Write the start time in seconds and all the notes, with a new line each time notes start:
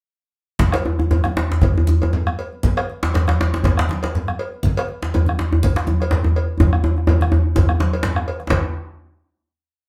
0.59 bombo low, djembe slap, high conga, low conga, djembe bass
0.72 bombo rim, cowbell, djembe slap, djembe tone
0.85 high conga, djembe tone
0.99 bombo rim, high conga, djembe tone
1.10 cowbell, djembe slap, high conga, djembe tone, djembe bass
1.24 bombo rim, high conga, djembe tone
1.37 djembe slap
1.50 djembe slap
1.52 djembe slap
1.61 bombo rim, bombo low, cowbell, djembe slap, djembe tone, djembe bass, low conga
1.75 djembe tone
1.78 djembe tone
1.87 high conga, djembe tone
2.01 bombo rim, cowbell, high conga, djembe tone
2.13 djembe slap, djembe bass
2.26 bombo rim, djembe slap, djembe tone, high conga
2.39 cowbell, djembe slap
2.53 djembe slap
2.63 bombo low, djembe slap, high conga, low conga, djembe bass
2.77 bombo rim, cowbell, djembe tone
2.90 high conga
3.03 bombo rim, djembe slap, high conga
3.14 cowbell, djembe slap, high conga, djembe bass
3.27 bombo rim, djembe slap, high conga, djembe tone
3.41 djembe slap
3.53 djembe slap
3.63 bombo rim, bombo low, cowbell, djembe slap, low conga, djembe bass
3.77 bombo rim, djembe slap, djembe tone
3.89 djembe slap, high conga
4.03 bombo rim, cowbell, djembe slap, high conga
4.15 djembe slap, djembe bass
4.28 bombo rim, djembe slap, high conga, djembe tone
4.39 cowbell
4.54 djembe slap
4.63 bombo low, djembe slap, high conga, low conga, djembe bass
4.77 bombo rim, cowbell, djembe tone
4.88 high conga
5.02 bombo rim, djembe slap, high conga
5.14 cowbell, djembe slap, high conga, djembe tone, djembe bass
5.26 bombo rim, high conga, djembe tone
5.39 djembe slap
5.53 djembe slap, djembe tone
5.63 bombo rim, bombo low, cowbell, djembe slap, low conga, djembe bass
5.76 bombo rim, djembe slap
5.87 high conga, djembe tone
6.00 bombo rim, cowbell, high conga
6.11 djembe slap, djembe bass
6.24 djembe slap, djembe tone, high conga
6.36 cowbell, djembe slap
6.49 djembe slap
6.60 bombo low, djembe slap, high conga, djembe tone, low conga, djembe bass
6.73 bombo rim, djembe slap, djembe tone
6.84 djembe tone, high conga
6.97 bombo rim, high conga
7.07 bombo rim, cowbell, djembe slap, djembe tone, high conga, djembe bass
7.21 bombo rim, high conga, djembe tone
7.32 djembe tone
7.56 bombo low, cowbell, djembe slap, djembe tone, low conga, djembe bass
7.69 bombo rim, djembe slap, djembe tone
7.80 djembe slap, high conga
7.93 cowbell, high conga
8.03 djembe slap, djembe bass
8.16 bombo rim, djembe tone, high conga
8.28 bombo rim, cowbell
8.40 bombo rim, high conga
8.50 bombo low, cowbell, djembe slap, djembe bass, low conga